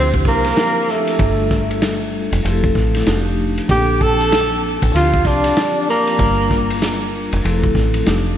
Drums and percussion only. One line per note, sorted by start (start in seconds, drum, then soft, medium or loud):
0.14 kick medium
0.25 kick medium
0.25 snare soft
0.44 snare soft
0.44 ride soft
0.56 snare loud
0.56 hi-hat pedal soft
0.56 ride soft
0.88 snare soft
1.07 ride medium
1.19 kick loud
1.19 ride medium
1.51 kick medium
1.51 snare soft
1.71 ride medium
1.82 snare medium
1.82 hi-hat pedal soft
1.82 ride medium
2.32 ride medium
2.45 ride medium
2.64 kick medium
2.75 kick medium
2.75 snare soft
2.94 snare soft
2.94 ride medium
3.07 snare loud
3.07 hi-hat pedal soft
3.07 ride medium
3.58 ride medium
3.69 kick loud
3.69 ride medium
4.01 kick medium
4.21 ride medium
4.32 snare medium
4.32 hi-hat pedal soft
4.32 ride medium
4.82 kick medium
4.82 ride medium
4.95 ride medium
5.14 kick medium
5.25 kick medium
5.25 snare soft
5.44 snare soft
5.44 ride medium
5.56 snare loud
5.56 hi-hat pedal soft
5.56 ride medium
5.88 snare soft
6.07 ride medium
6.19 kick loud
6.19 ride medium
6.51 kick medium
6.51 snare soft
6.70 ride medium
6.82 snare medium
6.82 hi-hat pedal soft
6.82 ride medium
7.33 ride medium
7.45 ride medium
7.64 kick medium
7.75 kick medium
7.75 snare soft
7.94 ride medium
8.06 snare loud
8.06 hi-hat pedal soft
8.06 ride medium